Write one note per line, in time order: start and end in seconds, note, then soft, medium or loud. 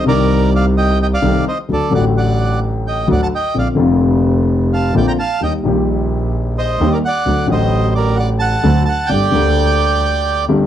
0.04 1.17 C2 medium
0.04 0.06 C3 medium
0.04 1.17 C3 medium
0.04 1.16 D#3 medium
0.04 1.17 C4 medium
0.04 0.50 A#4 medium
0.08 1.18 D#4 medium
0.08 0.53 D5 medium
0.55 0.65 D5 medium
0.55 0.66 F5 medium
0.77 0.98 D#5 medium
0.77 0.99 G5 medium
1.02 1.07 D#5 medium
1.02 1.07 G5 medium
1.14 1.45 D5 medium
1.14 1.45 F5 medium
1.22 1.42 C2 medium
1.22 1.42 C3 medium
1.22 1.42 D#3 medium
1.22 1.42 A3 medium
1.22 1.42 D#4 medium
1.48 1.58 C5 soft
1.48 1.59 D#5 medium
1.68 1.89 D2 soft
1.68 1.89 D2 medium
1.68 1.88 D3 soft
1.68 1.88 F#3 soft
1.68 1.89 A3 soft
1.68 1.89 F#4 soft
1.73 1.93 A4 medium
1.73 1.93 D5 medium
1.90 3.02 A1 medium
1.90 3.03 A1 medium
1.90 3.02 A2 medium
1.90 3.01 D3 medium
1.90 3.02 F#3 medium
1.90 3.03 A3 medium
1.94 3.03 F#4 medium
1.94 2.05 D5 medium
1.94 2.05 F#5 medium
2.17 2.60 D5 medium
2.17 2.60 F#5 medium
2.87 3.09 D#5 medium
2.87 3.08 G5 medium
3.08 3.28 D2 medium
3.08 3.29 D2 medium
3.08 3.28 D3 medium
3.08 3.28 F#3 medium
3.08 3.28 A3 soft
3.08 3.28 F#4 medium
3.12 3.21 D5 medium
3.12 3.21 F#5 medium
3.23 3.27 F#5 medium
3.23 3.27 A5 medium
3.35 3.55 D#5 medium
3.35 3.57 G5 medium
3.54 3.74 A#1 soft
3.54 3.76 A#1 soft
3.54 3.74 A#2 soft
3.54 3.73 D3 soft
3.54 3.74 A#3 soft
3.54 3.75 C4 soft
3.54 3.74 F4 soft
3.54 3.68 D5 soft
3.59 3.69 F5 medium
3.75 4.88 F1 medium
3.75 4.88 F2 medium
3.75 4.87 D3 medium
3.75 4.88 A#3 medium
3.75 4.88 C4 medium
3.79 4.89 F1 loud
3.79 4.89 F4 medium
4.73 4.94 F5 medium
4.73 4.95 A5 medium
4.94 5.14 A#1 medium
4.94 5.14 A#2 medium
4.94 5.14 D3 medium
4.94 5.14 A#3 medium
4.94 5.14 C4 medium
4.94 5.14 F4 medium
4.94 5.07 D5 medium
4.94 5.06 G5 medium
5.07 5.12 G5 medium
5.07 5.13 A#5 medium
5.19 5.40 F5 medium
5.19 5.42 A5 medium
5.41 5.60 D#2 soft
5.41 5.60 D#2 medium
5.41 5.60 D#3 soft
5.41 5.61 G3 soft
5.41 5.60 A#3 soft
5.41 5.61 G4 soft
5.41 5.54 D#5 medium
5.41 5.53 G5 medium
5.63 6.73 A#1 medium
5.63 6.75 A#1 medium
5.63 6.74 A#2 medium
5.63 6.74 D#3 medium
5.63 6.74 G3 medium
5.63 6.75 A#3 medium
5.67 6.76 G4 medium
6.58 6.90 C5 medium
6.58 6.93 D#5 medium
6.80 6.99 D#2 medium
6.80 7.00 D#2 medium
6.80 6.99 D#3 medium
6.80 6.99 G3 medium
6.80 7.00 A#3 medium
6.80 7.00 G4 medium
6.92 6.99 A#4 medium
6.92 6.97 D5 medium
7.05 7.48 D5 medium
7.05 7.47 F#5 medium
7.26 7.45 D2 medium
7.26 7.45 D2 soft
7.26 7.45 D3 soft
7.26 7.45 F#3 soft
7.26 7.45 A3 soft
7.26 7.45 F#4 soft
7.47 8.58 A1 medium
7.47 8.58 A2 medium
7.47 8.57 D3 medium
7.47 8.58 F#3 medium
7.47 8.59 A3 medium
7.47 8.59 F#4 medium
7.51 7.94 C5 medium
7.51 7.93 D#5 medium
7.95 8.18 A#4 medium
7.95 8.16 D5 medium
8.16 8.30 D5 medium
8.16 8.27 F#5 medium
8.39 8.84 F#5 medium
8.39 8.83 A5 medium
8.63 8.83 D2 medium
8.63 8.83 D3 medium
8.63 8.83 F#3 medium
8.63 8.84 A3 medium
8.63 8.84 F#4 medium
8.85 9.10 F#5 medium
8.85 9.10 A5 medium
9.06 9.29 G1 soft
9.06 9.29 G1 medium
9.06 9.29 G2 soft
9.06 9.29 D3 soft
9.06 9.29 A3 soft
9.06 9.29 A#3 soft
9.06 9.29 G4 soft
9.06 10.45 D5 medium
9.06 10.44 G5 medium
9.31 9.99 D2 medium
9.31 10.44 D2 medium
9.31 10.43 D3 medium
9.31 10.43 A3 medium
9.31 10.44 A#3 medium
9.31 10.45 G4 medium
10.49 10.67 G1 medium
10.49 10.67 G2 medium
10.49 10.67 D3 medium
10.49 10.67 A3 medium
10.49 10.67 A#3 medium
10.49 10.67 G4 medium